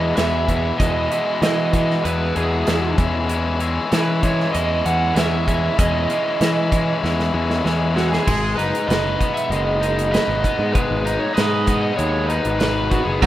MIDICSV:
0, 0, Header, 1, 6, 480
1, 0, Start_track
1, 0, Tempo, 621762
1, 615, Time_signature, 4, 2, 24, 8
1, 10237, End_track
2, 0, Start_track
2, 0, Title_t, "Lead electric guitar"
2, 0, Program_c, 0, 29
2, 0, Note_on_c, 0, 75, 82
2, 123, Note_off_c, 0, 75, 0
2, 126, Note_on_c, 0, 76, 86
2, 603, Note_off_c, 0, 76, 0
2, 606, Note_on_c, 0, 75, 94
2, 1061, Note_off_c, 0, 75, 0
2, 1099, Note_on_c, 0, 75, 82
2, 1575, Note_on_c, 0, 71, 82
2, 1594, Note_off_c, 0, 75, 0
2, 1800, Note_off_c, 0, 71, 0
2, 1828, Note_on_c, 0, 68, 73
2, 2275, Note_off_c, 0, 68, 0
2, 3049, Note_on_c, 0, 71, 80
2, 3270, Note_on_c, 0, 73, 83
2, 3284, Note_off_c, 0, 71, 0
2, 3490, Note_off_c, 0, 73, 0
2, 3493, Note_on_c, 0, 75, 90
2, 3746, Note_off_c, 0, 75, 0
2, 3747, Note_on_c, 0, 78, 96
2, 3974, Note_on_c, 0, 76, 84
2, 3993, Note_off_c, 0, 78, 0
2, 4468, Note_off_c, 0, 76, 0
2, 4471, Note_on_c, 0, 75, 84
2, 6117, Note_off_c, 0, 75, 0
2, 6147, Note_on_c, 0, 66, 77
2, 6266, Note_off_c, 0, 66, 0
2, 6266, Note_on_c, 0, 68, 81
2, 6604, Note_off_c, 0, 68, 0
2, 6607, Note_on_c, 0, 71, 82
2, 6848, Note_on_c, 0, 75, 89
2, 6863, Note_off_c, 0, 71, 0
2, 7189, Note_off_c, 0, 75, 0
2, 7211, Note_on_c, 0, 76, 86
2, 7338, Note_off_c, 0, 76, 0
2, 7338, Note_on_c, 0, 75, 94
2, 7803, Note_off_c, 0, 75, 0
2, 7812, Note_on_c, 0, 75, 92
2, 8264, Note_off_c, 0, 75, 0
2, 8282, Note_on_c, 0, 71, 92
2, 8645, Note_on_c, 0, 73, 87
2, 8661, Note_off_c, 0, 71, 0
2, 8749, Note_off_c, 0, 73, 0
2, 8749, Note_on_c, 0, 75, 90
2, 9111, Note_off_c, 0, 75, 0
2, 9120, Note_on_c, 0, 75, 87
2, 9234, Note_off_c, 0, 75, 0
2, 9237, Note_on_c, 0, 73, 88
2, 9468, Note_on_c, 0, 71, 99
2, 9493, Note_off_c, 0, 73, 0
2, 9962, Note_on_c, 0, 66, 80
2, 9975, Note_off_c, 0, 71, 0
2, 10076, Note_on_c, 0, 68, 82
2, 10079, Note_off_c, 0, 66, 0
2, 10237, Note_off_c, 0, 68, 0
2, 10237, End_track
3, 0, Start_track
3, 0, Title_t, "Overdriven electric guitar"
3, 0, Program_c, 1, 29
3, 0, Note_on_c, 1, 40, 67
3, 0, Note_on_c, 1, 47, 76
3, 0, Note_on_c, 1, 52, 74
3, 0, Note_on_c, 1, 56, 80
3, 0, Note_on_c, 1, 59, 77
3, 0, Note_on_c, 1, 64, 83
3, 121, Note_off_c, 1, 47, 0
3, 126, Note_off_c, 1, 40, 0
3, 129, Note_on_c, 1, 40, 70
3, 130, Note_on_c, 1, 47, 82
3, 133, Note_off_c, 1, 56, 0
3, 133, Note_off_c, 1, 59, 0
3, 136, Note_off_c, 1, 52, 0
3, 136, Note_on_c, 1, 56, 82
3, 139, Note_on_c, 1, 52, 76
3, 140, Note_off_c, 1, 64, 0
3, 142, Note_on_c, 1, 59, 80
3, 143, Note_on_c, 1, 64, 82
3, 366, Note_off_c, 1, 40, 0
3, 368, Note_off_c, 1, 47, 0
3, 369, Note_on_c, 1, 40, 76
3, 374, Note_off_c, 1, 59, 0
3, 376, Note_off_c, 1, 52, 0
3, 377, Note_on_c, 1, 47, 72
3, 379, Note_on_c, 1, 52, 85
3, 380, Note_off_c, 1, 56, 0
3, 383, Note_on_c, 1, 56, 76
3, 383, Note_on_c, 1, 59, 84
3, 384, Note_off_c, 1, 64, 0
3, 387, Note_on_c, 1, 64, 79
3, 603, Note_off_c, 1, 47, 0
3, 605, Note_off_c, 1, 40, 0
3, 609, Note_on_c, 1, 40, 85
3, 610, Note_off_c, 1, 52, 0
3, 612, Note_off_c, 1, 59, 0
3, 612, Note_on_c, 1, 47, 84
3, 613, Note_on_c, 1, 52, 85
3, 616, Note_off_c, 1, 56, 0
3, 618, Note_off_c, 1, 64, 0
3, 619, Note_on_c, 1, 56, 83
3, 621, Note_on_c, 1, 59, 89
3, 621, Note_on_c, 1, 64, 93
3, 846, Note_off_c, 1, 47, 0
3, 847, Note_off_c, 1, 40, 0
3, 850, Note_on_c, 1, 40, 82
3, 855, Note_off_c, 1, 52, 0
3, 855, Note_on_c, 1, 47, 77
3, 857, Note_off_c, 1, 59, 0
3, 858, Note_off_c, 1, 56, 0
3, 859, Note_on_c, 1, 52, 83
3, 861, Note_on_c, 1, 56, 82
3, 865, Note_off_c, 1, 64, 0
3, 867, Note_on_c, 1, 59, 81
3, 868, Note_on_c, 1, 64, 84
3, 1088, Note_off_c, 1, 47, 0
3, 1093, Note_off_c, 1, 40, 0
3, 1096, Note_on_c, 1, 40, 84
3, 1097, Note_on_c, 1, 47, 85
3, 1100, Note_off_c, 1, 59, 0
3, 1102, Note_off_c, 1, 52, 0
3, 1103, Note_off_c, 1, 56, 0
3, 1105, Note_on_c, 1, 52, 87
3, 1106, Note_on_c, 1, 56, 83
3, 1109, Note_off_c, 1, 64, 0
3, 1110, Note_on_c, 1, 59, 81
3, 1112, Note_on_c, 1, 64, 88
3, 1322, Note_off_c, 1, 47, 0
3, 1323, Note_off_c, 1, 40, 0
3, 1326, Note_on_c, 1, 40, 71
3, 1330, Note_off_c, 1, 59, 0
3, 1331, Note_on_c, 1, 47, 77
3, 1332, Note_off_c, 1, 52, 0
3, 1335, Note_on_c, 1, 52, 68
3, 1339, Note_on_c, 1, 59, 81
3, 1341, Note_off_c, 1, 56, 0
3, 1344, Note_on_c, 1, 56, 75
3, 1346, Note_off_c, 1, 64, 0
3, 1349, Note_on_c, 1, 64, 80
3, 1573, Note_off_c, 1, 40, 0
3, 1574, Note_off_c, 1, 47, 0
3, 1577, Note_on_c, 1, 40, 92
3, 1579, Note_off_c, 1, 59, 0
3, 1580, Note_off_c, 1, 56, 0
3, 1583, Note_off_c, 1, 52, 0
3, 1583, Note_on_c, 1, 47, 82
3, 1583, Note_on_c, 1, 56, 90
3, 1586, Note_on_c, 1, 52, 91
3, 1588, Note_on_c, 1, 59, 99
3, 1591, Note_off_c, 1, 64, 0
3, 1594, Note_on_c, 1, 64, 98
3, 1816, Note_off_c, 1, 47, 0
3, 1817, Note_off_c, 1, 40, 0
3, 1820, Note_on_c, 1, 40, 73
3, 1825, Note_on_c, 1, 47, 77
3, 1827, Note_off_c, 1, 56, 0
3, 1828, Note_off_c, 1, 59, 0
3, 1829, Note_off_c, 1, 52, 0
3, 1830, Note_on_c, 1, 56, 78
3, 1832, Note_on_c, 1, 52, 73
3, 1833, Note_off_c, 1, 64, 0
3, 1837, Note_on_c, 1, 64, 84
3, 1838, Note_on_c, 1, 59, 77
3, 2054, Note_off_c, 1, 47, 0
3, 2056, Note_off_c, 1, 40, 0
3, 2059, Note_on_c, 1, 40, 71
3, 2062, Note_off_c, 1, 52, 0
3, 2063, Note_off_c, 1, 59, 0
3, 2063, Note_on_c, 1, 47, 75
3, 2065, Note_on_c, 1, 52, 78
3, 2067, Note_off_c, 1, 56, 0
3, 2070, Note_on_c, 1, 56, 79
3, 2072, Note_off_c, 1, 64, 0
3, 2072, Note_on_c, 1, 59, 86
3, 2075, Note_on_c, 1, 64, 80
3, 2288, Note_off_c, 1, 47, 0
3, 2293, Note_off_c, 1, 59, 0
3, 2294, Note_off_c, 1, 52, 0
3, 2294, Note_off_c, 1, 56, 0
3, 2297, Note_on_c, 1, 52, 79
3, 2297, Note_on_c, 1, 56, 83
3, 2302, Note_off_c, 1, 64, 0
3, 2303, Note_on_c, 1, 61, 90
3, 2305, Note_on_c, 1, 64, 88
3, 2534, Note_off_c, 1, 52, 0
3, 2536, Note_off_c, 1, 56, 0
3, 2537, Note_off_c, 1, 61, 0
3, 2537, Note_on_c, 1, 52, 86
3, 2539, Note_on_c, 1, 56, 95
3, 2540, Note_on_c, 1, 61, 95
3, 2544, Note_off_c, 1, 64, 0
3, 2547, Note_on_c, 1, 64, 96
3, 2777, Note_off_c, 1, 52, 0
3, 2780, Note_off_c, 1, 56, 0
3, 2780, Note_on_c, 1, 52, 77
3, 2783, Note_on_c, 1, 56, 80
3, 2786, Note_off_c, 1, 61, 0
3, 2789, Note_on_c, 1, 61, 86
3, 2790, Note_off_c, 1, 64, 0
3, 2793, Note_on_c, 1, 64, 88
3, 3021, Note_off_c, 1, 52, 0
3, 3023, Note_off_c, 1, 56, 0
3, 3024, Note_on_c, 1, 52, 80
3, 3026, Note_on_c, 1, 56, 89
3, 3029, Note_off_c, 1, 64, 0
3, 3031, Note_off_c, 1, 61, 0
3, 3032, Note_on_c, 1, 64, 97
3, 3034, Note_on_c, 1, 61, 91
3, 3256, Note_off_c, 1, 52, 0
3, 3259, Note_on_c, 1, 52, 77
3, 3263, Note_off_c, 1, 56, 0
3, 3265, Note_off_c, 1, 61, 0
3, 3266, Note_on_c, 1, 56, 81
3, 3268, Note_on_c, 1, 61, 86
3, 3271, Note_off_c, 1, 64, 0
3, 3275, Note_on_c, 1, 64, 78
3, 3494, Note_off_c, 1, 52, 0
3, 3503, Note_on_c, 1, 52, 82
3, 3504, Note_off_c, 1, 61, 0
3, 3509, Note_off_c, 1, 56, 0
3, 3509, Note_off_c, 1, 64, 0
3, 3512, Note_on_c, 1, 56, 80
3, 3513, Note_on_c, 1, 61, 89
3, 3518, Note_on_c, 1, 64, 99
3, 3740, Note_off_c, 1, 52, 0
3, 3745, Note_off_c, 1, 61, 0
3, 3748, Note_off_c, 1, 56, 0
3, 3748, Note_off_c, 1, 64, 0
3, 3749, Note_on_c, 1, 52, 73
3, 3751, Note_on_c, 1, 56, 82
3, 3755, Note_on_c, 1, 61, 78
3, 3758, Note_on_c, 1, 64, 86
3, 3973, Note_off_c, 1, 52, 0
3, 3982, Note_off_c, 1, 61, 0
3, 3982, Note_on_c, 1, 52, 79
3, 3985, Note_off_c, 1, 56, 0
3, 3986, Note_off_c, 1, 64, 0
3, 3988, Note_on_c, 1, 56, 84
3, 3991, Note_on_c, 1, 61, 87
3, 3996, Note_on_c, 1, 64, 79
3, 4211, Note_off_c, 1, 52, 0
3, 4220, Note_off_c, 1, 61, 0
3, 4220, Note_on_c, 1, 52, 75
3, 4223, Note_off_c, 1, 56, 0
3, 4224, Note_off_c, 1, 64, 0
3, 4226, Note_on_c, 1, 56, 73
3, 4229, Note_on_c, 1, 61, 82
3, 4234, Note_on_c, 1, 64, 87
3, 4455, Note_off_c, 1, 52, 0
3, 4461, Note_off_c, 1, 61, 0
3, 4462, Note_off_c, 1, 56, 0
3, 4465, Note_on_c, 1, 52, 86
3, 4468, Note_off_c, 1, 64, 0
3, 4470, Note_on_c, 1, 61, 89
3, 4471, Note_on_c, 1, 56, 84
3, 4477, Note_on_c, 1, 64, 93
3, 4695, Note_off_c, 1, 52, 0
3, 4698, Note_off_c, 1, 56, 0
3, 4701, Note_off_c, 1, 61, 0
3, 4704, Note_on_c, 1, 52, 85
3, 4706, Note_off_c, 1, 64, 0
3, 4707, Note_on_c, 1, 56, 80
3, 4710, Note_on_c, 1, 61, 79
3, 4716, Note_on_c, 1, 64, 83
3, 4761, Note_off_c, 1, 40, 0
3, 4932, Note_off_c, 1, 52, 0
3, 4939, Note_off_c, 1, 56, 0
3, 4942, Note_on_c, 1, 52, 80
3, 4945, Note_off_c, 1, 61, 0
3, 4945, Note_off_c, 1, 64, 0
3, 4949, Note_on_c, 1, 56, 78
3, 4954, Note_on_c, 1, 64, 86
3, 4955, Note_on_c, 1, 61, 84
3, 5173, Note_off_c, 1, 52, 0
3, 5176, Note_off_c, 1, 56, 0
3, 5179, Note_off_c, 1, 61, 0
3, 5180, Note_off_c, 1, 64, 0
3, 5182, Note_on_c, 1, 52, 70
3, 5185, Note_on_c, 1, 56, 70
3, 5188, Note_on_c, 1, 61, 78
3, 5190, Note_on_c, 1, 64, 76
3, 5417, Note_off_c, 1, 52, 0
3, 5421, Note_off_c, 1, 56, 0
3, 5427, Note_off_c, 1, 61, 0
3, 5427, Note_on_c, 1, 52, 92
3, 5430, Note_off_c, 1, 64, 0
3, 5430, Note_on_c, 1, 56, 91
3, 5437, Note_on_c, 1, 61, 93
3, 5439, Note_on_c, 1, 64, 94
3, 5654, Note_off_c, 1, 52, 0
3, 5654, Note_off_c, 1, 56, 0
3, 5656, Note_off_c, 1, 61, 0
3, 5663, Note_on_c, 1, 56, 73
3, 5664, Note_on_c, 1, 52, 79
3, 5665, Note_off_c, 1, 64, 0
3, 5665, Note_on_c, 1, 61, 80
3, 5674, Note_on_c, 1, 64, 80
3, 5890, Note_off_c, 1, 56, 0
3, 5891, Note_off_c, 1, 52, 0
3, 5893, Note_off_c, 1, 61, 0
3, 5899, Note_off_c, 1, 64, 0
3, 5899, Note_on_c, 1, 56, 77
3, 5900, Note_on_c, 1, 52, 72
3, 5902, Note_on_c, 1, 61, 77
3, 5908, Note_on_c, 1, 64, 82
3, 6129, Note_off_c, 1, 52, 0
3, 6132, Note_off_c, 1, 56, 0
3, 6138, Note_on_c, 1, 52, 79
3, 6141, Note_on_c, 1, 56, 78
3, 6143, Note_off_c, 1, 61, 0
3, 6145, Note_off_c, 1, 64, 0
3, 6152, Note_on_c, 1, 61, 78
3, 6155, Note_on_c, 1, 64, 81
3, 6366, Note_off_c, 1, 52, 0
3, 6368, Note_off_c, 1, 56, 0
3, 6373, Note_off_c, 1, 61, 0
3, 6375, Note_off_c, 1, 64, 0
3, 6379, Note_on_c, 1, 56, 64
3, 6622, Note_on_c, 1, 63, 60
3, 6857, Note_on_c, 1, 71, 71
3, 7095, Note_on_c, 1, 59, 61
3, 7329, Note_off_c, 1, 56, 0
3, 7339, Note_on_c, 1, 56, 69
3, 7570, Note_off_c, 1, 63, 0
3, 7573, Note_on_c, 1, 63, 61
3, 7810, Note_off_c, 1, 71, 0
3, 7813, Note_on_c, 1, 71, 70
3, 8049, Note_off_c, 1, 59, 0
3, 8053, Note_on_c, 1, 59, 67
3, 8274, Note_off_c, 1, 56, 0
3, 8283, Note_on_c, 1, 56, 64
3, 8526, Note_off_c, 1, 63, 0
3, 8529, Note_on_c, 1, 63, 70
3, 8759, Note_off_c, 1, 71, 0
3, 8762, Note_on_c, 1, 71, 74
3, 9003, Note_off_c, 1, 59, 0
3, 9006, Note_on_c, 1, 59, 61
3, 9235, Note_off_c, 1, 56, 0
3, 9244, Note_on_c, 1, 56, 69
3, 9480, Note_off_c, 1, 63, 0
3, 9483, Note_on_c, 1, 63, 64
3, 9716, Note_off_c, 1, 71, 0
3, 9719, Note_on_c, 1, 71, 75
3, 9964, Note_off_c, 1, 59, 0
3, 9967, Note_on_c, 1, 59, 65
3, 10198, Note_off_c, 1, 56, 0
3, 10201, Note_off_c, 1, 59, 0
3, 10201, Note_on_c, 1, 59, 74
3, 10237, Note_off_c, 1, 59, 0
3, 10237, Note_off_c, 1, 63, 0
3, 10237, Note_off_c, 1, 71, 0
3, 10237, End_track
4, 0, Start_track
4, 0, Title_t, "Overdriven electric guitar"
4, 0, Program_c, 2, 29
4, 10209, Note_on_c, 2, 54, 91
4, 10237, Note_off_c, 2, 54, 0
4, 10237, End_track
5, 0, Start_track
5, 0, Title_t, "Picked electric bass"
5, 0, Program_c, 3, 34
5, 0, Note_on_c, 3, 40, 87
5, 91, Note_off_c, 3, 40, 0
5, 137, Note_on_c, 3, 40, 77
5, 546, Note_off_c, 3, 40, 0
5, 621, Note_on_c, 3, 40, 86
5, 824, Note_off_c, 3, 40, 0
5, 1094, Note_on_c, 3, 52, 81
5, 1506, Note_off_c, 3, 52, 0
5, 1582, Note_on_c, 3, 40, 84
5, 1786, Note_off_c, 3, 40, 0
5, 1825, Note_on_c, 3, 40, 91
5, 2028, Note_off_c, 3, 40, 0
5, 2066, Note_on_c, 3, 40, 78
5, 2269, Note_off_c, 3, 40, 0
5, 2301, Note_on_c, 3, 40, 86
5, 2916, Note_off_c, 3, 40, 0
5, 3029, Note_on_c, 3, 52, 88
5, 3436, Note_off_c, 3, 52, 0
5, 3511, Note_on_c, 3, 40, 87
5, 3713, Note_off_c, 3, 40, 0
5, 3748, Note_on_c, 3, 40, 91
5, 3951, Note_off_c, 3, 40, 0
5, 3977, Note_on_c, 3, 40, 83
5, 4390, Note_off_c, 3, 40, 0
5, 4468, Note_on_c, 3, 40, 81
5, 4671, Note_off_c, 3, 40, 0
5, 4947, Note_on_c, 3, 52, 89
5, 5355, Note_off_c, 3, 52, 0
5, 5432, Note_on_c, 3, 40, 89
5, 5634, Note_off_c, 3, 40, 0
5, 5666, Note_on_c, 3, 40, 84
5, 5870, Note_off_c, 3, 40, 0
5, 5906, Note_on_c, 3, 40, 76
5, 6314, Note_off_c, 3, 40, 0
5, 6391, Note_on_c, 3, 32, 85
5, 6592, Note_off_c, 3, 32, 0
5, 6622, Note_on_c, 3, 30, 74
5, 6725, Note_off_c, 3, 30, 0
5, 6861, Note_on_c, 3, 30, 86
5, 7066, Note_off_c, 3, 30, 0
5, 7334, Note_on_c, 3, 30, 98
5, 7847, Note_off_c, 3, 30, 0
5, 7935, Note_on_c, 3, 32, 70
5, 8039, Note_off_c, 3, 32, 0
5, 8174, Note_on_c, 3, 44, 82
5, 8278, Note_off_c, 3, 44, 0
5, 8422, Note_on_c, 3, 32, 77
5, 8624, Note_off_c, 3, 32, 0
5, 8783, Note_on_c, 3, 44, 83
5, 9188, Note_off_c, 3, 44, 0
5, 9256, Note_on_c, 3, 39, 88
5, 9561, Note_off_c, 3, 39, 0
5, 9615, Note_on_c, 3, 32, 80
5, 10022, Note_off_c, 3, 32, 0
5, 10079, Note_on_c, 3, 30, 75
5, 10187, Note_off_c, 3, 30, 0
5, 10206, Note_on_c, 3, 35, 94
5, 10237, Note_off_c, 3, 35, 0
5, 10237, End_track
6, 0, Start_track
6, 0, Title_t, "Drums"
6, 130, Note_on_c, 9, 42, 74
6, 137, Note_on_c, 9, 38, 100
6, 207, Note_off_c, 9, 42, 0
6, 214, Note_off_c, 9, 38, 0
6, 374, Note_on_c, 9, 36, 70
6, 376, Note_on_c, 9, 42, 54
6, 451, Note_off_c, 9, 36, 0
6, 453, Note_off_c, 9, 42, 0
6, 617, Note_on_c, 9, 36, 102
6, 619, Note_on_c, 9, 42, 78
6, 694, Note_off_c, 9, 36, 0
6, 696, Note_off_c, 9, 42, 0
6, 861, Note_on_c, 9, 42, 55
6, 938, Note_off_c, 9, 42, 0
6, 1099, Note_on_c, 9, 42, 76
6, 1106, Note_on_c, 9, 38, 103
6, 1177, Note_off_c, 9, 42, 0
6, 1183, Note_off_c, 9, 38, 0
6, 1338, Note_on_c, 9, 36, 78
6, 1339, Note_on_c, 9, 42, 56
6, 1416, Note_off_c, 9, 36, 0
6, 1416, Note_off_c, 9, 42, 0
6, 1470, Note_on_c, 9, 38, 29
6, 1547, Note_off_c, 9, 38, 0
6, 1584, Note_on_c, 9, 42, 70
6, 1661, Note_off_c, 9, 42, 0
6, 1821, Note_on_c, 9, 42, 55
6, 1898, Note_off_c, 9, 42, 0
6, 2059, Note_on_c, 9, 42, 73
6, 2066, Note_on_c, 9, 38, 99
6, 2136, Note_off_c, 9, 42, 0
6, 2143, Note_off_c, 9, 38, 0
6, 2301, Note_on_c, 9, 42, 52
6, 2302, Note_on_c, 9, 36, 93
6, 2378, Note_off_c, 9, 42, 0
6, 2379, Note_off_c, 9, 36, 0
6, 2543, Note_on_c, 9, 42, 76
6, 2620, Note_off_c, 9, 42, 0
6, 2781, Note_on_c, 9, 42, 51
6, 2858, Note_off_c, 9, 42, 0
6, 3025, Note_on_c, 9, 42, 79
6, 3032, Note_on_c, 9, 38, 108
6, 3102, Note_off_c, 9, 42, 0
6, 3109, Note_off_c, 9, 38, 0
6, 3266, Note_on_c, 9, 36, 82
6, 3267, Note_on_c, 9, 42, 61
6, 3343, Note_off_c, 9, 36, 0
6, 3344, Note_off_c, 9, 42, 0
6, 3396, Note_on_c, 9, 38, 30
6, 3473, Note_off_c, 9, 38, 0
6, 3509, Note_on_c, 9, 42, 79
6, 3586, Note_off_c, 9, 42, 0
6, 3749, Note_on_c, 9, 42, 58
6, 3827, Note_off_c, 9, 42, 0
6, 3987, Note_on_c, 9, 42, 81
6, 3994, Note_on_c, 9, 38, 102
6, 4064, Note_off_c, 9, 42, 0
6, 4071, Note_off_c, 9, 38, 0
6, 4229, Note_on_c, 9, 36, 74
6, 4233, Note_on_c, 9, 42, 53
6, 4306, Note_off_c, 9, 36, 0
6, 4310, Note_off_c, 9, 42, 0
6, 4469, Note_on_c, 9, 36, 105
6, 4469, Note_on_c, 9, 42, 87
6, 4546, Note_off_c, 9, 36, 0
6, 4546, Note_off_c, 9, 42, 0
6, 4707, Note_on_c, 9, 42, 58
6, 4785, Note_off_c, 9, 42, 0
6, 4948, Note_on_c, 9, 42, 81
6, 4955, Note_on_c, 9, 38, 105
6, 5026, Note_off_c, 9, 42, 0
6, 5033, Note_off_c, 9, 38, 0
6, 5189, Note_on_c, 9, 36, 84
6, 5190, Note_on_c, 9, 42, 60
6, 5266, Note_off_c, 9, 36, 0
6, 5267, Note_off_c, 9, 42, 0
6, 5438, Note_on_c, 9, 38, 54
6, 5515, Note_off_c, 9, 38, 0
6, 5554, Note_on_c, 9, 38, 50
6, 5631, Note_off_c, 9, 38, 0
6, 5791, Note_on_c, 9, 38, 58
6, 5868, Note_off_c, 9, 38, 0
6, 5912, Note_on_c, 9, 38, 75
6, 5989, Note_off_c, 9, 38, 0
6, 6153, Note_on_c, 9, 38, 74
6, 6230, Note_off_c, 9, 38, 0
6, 6276, Note_on_c, 9, 38, 74
6, 6353, Note_off_c, 9, 38, 0
6, 6388, Note_on_c, 9, 36, 103
6, 6389, Note_on_c, 9, 49, 89
6, 6465, Note_off_c, 9, 36, 0
6, 6466, Note_off_c, 9, 49, 0
6, 6632, Note_on_c, 9, 42, 50
6, 6709, Note_off_c, 9, 42, 0
6, 6753, Note_on_c, 9, 42, 57
6, 6831, Note_off_c, 9, 42, 0
6, 6873, Note_on_c, 9, 42, 60
6, 6880, Note_on_c, 9, 38, 102
6, 6950, Note_off_c, 9, 42, 0
6, 6957, Note_off_c, 9, 38, 0
6, 7107, Note_on_c, 9, 36, 81
6, 7112, Note_on_c, 9, 42, 58
6, 7184, Note_off_c, 9, 36, 0
6, 7189, Note_off_c, 9, 42, 0
6, 7234, Note_on_c, 9, 42, 58
6, 7311, Note_off_c, 9, 42, 0
6, 7349, Note_on_c, 9, 42, 61
6, 7426, Note_off_c, 9, 42, 0
6, 7587, Note_on_c, 9, 42, 61
6, 7664, Note_off_c, 9, 42, 0
6, 7711, Note_on_c, 9, 42, 58
6, 7788, Note_off_c, 9, 42, 0
6, 7828, Note_on_c, 9, 42, 59
6, 7835, Note_on_c, 9, 38, 104
6, 7905, Note_off_c, 9, 42, 0
6, 7912, Note_off_c, 9, 38, 0
6, 8062, Note_on_c, 9, 36, 75
6, 8066, Note_on_c, 9, 42, 58
6, 8139, Note_off_c, 9, 36, 0
6, 8143, Note_off_c, 9, 42, 0
6, 8300, Note_on_c, 9, 36, 105
6, 8301, Note_on_c, 9, 42, 65
6, 8377, Note_off_c, 9, 36, 0
6, 8378, Note_off_c, 9, 42, 0
6, 8544, Note_on_c, 9, 42, 61
6, 8621, Note_off_c, 9, 42, 0
6, 8777, Note_on_c, 9, 42, 58
6, 8784, Note_on_c, 9, 38, 104
6, 8854, Note_off_c, 9, 42, 0
6, 8861, Note_off_c, 9, 38, 0
6, 9011, Note_on_c, 9, 42, 62
6, 9014, Note_on_c, 9, 36, 80
6, 9088, Note_off_c, 9, 42, 0
6, 9091, Note_off_c, 9, 36, 0
6, 9254, Note_on_c, 9, 42, 60
6, 9331, Note_off_c, 9, 42, 0
6, 9494, Note_on_c, 9, 42, 59
6, 9571, Note_off_c, 9, 42, 0
6, 9610, Note_on_c, 9, 42, 56
6, 9687, Note_off_c, 9, 42, 0
6, 9728, Note_on_c, 9, 42, 55
6, 9735, Note_on_c, 9, 38, 105
6, 9805, Note_off_c, 9, 42, 0
6, 9812, Note_off_c, 9, 38, 0
6, 9970, Note_on_c, 9, 36, 78
6, 9971, Note_on_c, 9, 42, 55
6, 10047, Note_off_c, 9, 36, 0
6, 10048, Note_off_c, 9, 42, 0
6, 10209, Note_on_c, 9, 36, 106
6, 10210, Note_on_c, 9, 42, 54
6, 10237, Note_off_c, 9, 36, 0
6, 10237, Note_off_c, 9, 42, 0
6, 10237, End_track
0, 0, End_of_file